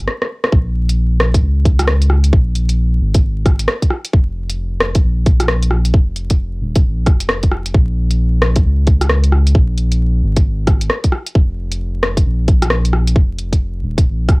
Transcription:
0.08 cross-stick
0.22 cross-stick
0.44 cross-stick
0.53 sub bass A#1, kick
0.90 closed hi-hat
1.20 cross-stick
1.34 kick, closed hi-hat
1.42 sub bass C#2
1.65 kick, closed hi-hat
1.79 cross-stick, closed hi-hat
1.88 cross-stick
2.02 closed hi-hat
2.10 cross-stick
2.24 closed hi-hat
2.33 sub bass A#1, kick
2.55 closed hi-hat
2.69 closed hi-hat
3.00 sub bass G#1
3.14 kick, closed hi-hat
3.46 kick, cross-stick, closed hi-hat
3.59 closed hi-hat
3.68 cross-stick
3.82 kick, closed hi-hat
3.90 cross-stick
4.05 closed hi-hat
4.13 sub bass F1, kick
4.50 closed hi-hat
4.80 cross-stick
4.95 kick, closed hi-hat
5.03 sub bass A#1
5.26 kick, closed hi-hat
5.40 cross-stick, closed hi-hat
5.48 cross-stick
5.62 closed hi-hat
5.71 cross-stick
5.85 closed hi-hat
5.94 sub bass F1, kick
6.16 closed hi-hat
6.30 kick, closed hi-hat
6.61 sub bass D#1
6.75 kick, closed hi-hat
6.84 sub bass A#1
7.06 sub bass F1, kick, cross-stick, closed hi-hat
7.20 closed hi-hat
7.29 cross-stick
7.43 kick, closed hi-hat
7.52 cross-stick
7.66 closed hi-hat
7.74 sub bass A#1, kick
8.11 closed hi-hat
8.42 cross-stick
8.56 kick, closed hi-hat
8.65 sub bass C#2
8.87 kick, closed hi-hat
9.01 cross-stick, closed hi-hat
9.09 cross-stick
9.24 closed hi-hat
9.32 cross-stick
9.47 closed hi-hat
9.55 sub bass A#1, kick
9.78 closed hi-hat
9.92 closed hi-hat
10.23 sub bass G#1
10.36 kick, closed hi-hat
10.67 kick, cross-stick, closed hi-hat
10.81 closed hi-hat
10.90 cross-stick
11.04 kick, closed hi-hat
11.12 cross-stick
11.27 closed hi-hat
11.35 sub bass F1, kick
11.72 closed hi-hat
12.03 cross-stick
12.17 kick, closed hi-hat
12.25 sub bass A#1
12.48 kick, closed hi-hat
12.62 cross-stick, closed hi-hat
12.70 cross-stick
12.85 closed hi-hat
12.93 cross-stick
13.08 closed hi-hat
13.16 sub bass F1, kick
13.39 closed hi-hat
13.53 kick, closed hi-hat
13.83 sub bass D#1
13.98 kick, closed hi-hat
14.05 sub bass A#1
14.28 sub bass F1, kick, cross-stick, closed hi-hat

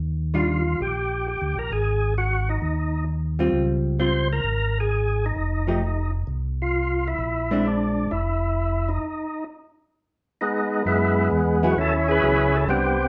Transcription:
Already playing: tonewheel organ D#2
0.34 hollow-body jazz guitar D#3 G3 D4 F4, tonewheel organ F4
0.80 tonewheel organ A#1 G4
1.28 tonewheel organ G4
1.41 tonewheel organ D2
1.56 tonewheel organ A#1 A#4
1.72 tonewheel organ G#1 G#4
2.18 tonewheel organ F#4
2.49 tonewheel organ D#4
2.62 tonewheel organ D#2
3.39 hollow-body jazz guitar G3 C4 F4
3.53 tonewheel organ C#2
3.99 hollow-body jazz guitar G3 C4 F4, tonewheel organ C5
4.33 tonewheel organ A#4
4.44 tonewheel organ G#1
4.80 tonewheel organ G#4
5.26 tonewheel organ D#4
5.36 tonewheel organ F1
5.67 hollow-body jazz guitar F3 A3 D#4 G4
6.27 tonewheel organ C2
6.62 tonewheel organ F4
7.08 tonewheel organ E4
7.19 tonewheel organ A#1
7.51 hollow-body jazz guitar G#3 C4 D4
7.66 tonewheel organ D4
8.11 tonewheel organ F1 E4
8.89 tonewheel organ D#4
10.41 tonewheel organ G#3 B3 D#4
10.85 tonewheel organ F#2 G#3 B3 E4
11.31 tonewheel organ E2
11.63 hollow-body jazz guitar F#3 B3 E4 G#4, tonewheel organ F#4
11.76 tonewheel organ D#2 C#4 E4
11.81 tonewheel organ A4
12.09 tonewheel organ E4 G#4 B4
12.22 tonewheel organ C#2, hollow-body jazz guitar F#3 B3 E4 G#4
12.55 tonewheel organ A4
12.67 tonewheel organ C2 B3 C4 G4, hollow-body jazz guitar G3 C4 D4

